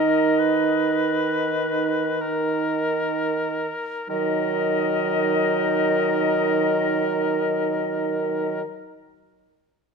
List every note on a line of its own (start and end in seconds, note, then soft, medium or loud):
0.00 3.68 D#3 soft
0.00 3.15 D#4 soft
0.00 3.63 D#4 soft
0.00 0.40 A#4 soft
0.00 2.17 D#5 soft
0.39 2.22 B4 medium
2.21 4.09 A#4 soft
4.08 8.63 D#3 soft
4.08 8.62 F#3 soft
4.08 8.61 D#4 soft
4.08 8.63 A#4 soft
4.08 8.62 D#5 medium